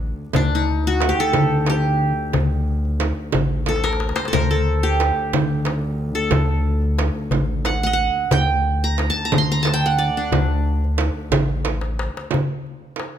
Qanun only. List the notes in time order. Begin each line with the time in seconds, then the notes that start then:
Already playing: D4
0.36 D4
0.55 D#4
0.87 F#4
1.09 G4
1.20 A4
1.70 G4
3.69 A4
3.84 A#4
4.16 C5
4.28 A4
4.33 A#4
4.51 A4
4.83 G4
6.15 A4
7.66 F#5
7.83 D#5 F#5
7.93 F#5
8.32 G5
8.84 A#5
9.10 A5
9.25 A#5
9.38 C6
9.52 A#5
9.63 A5
9.74 G5
9.86 F#5
9.98 D5
10.17 D4